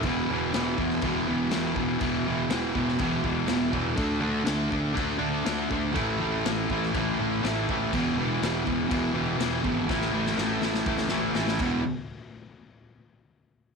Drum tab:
CC |x---x---x---x---|x---x---x---x---|x---x---x---x---|x---x---x---x---|
SD |----o--o----o---|----o--o----o---|----o-------o---|----o--o----o---|
BD |o-----o-o-----o-|o-----o-o-o---o-|o-----o-o-----o-|o-----o-o-----o-|

CC |x---x---x---x---|--------------x-|----------------|
SD |----o-------o---|oo-oo-oo-oo-oo--|----------------|
BD |o-----o-o-----o-|o-------o-----o-|----------------|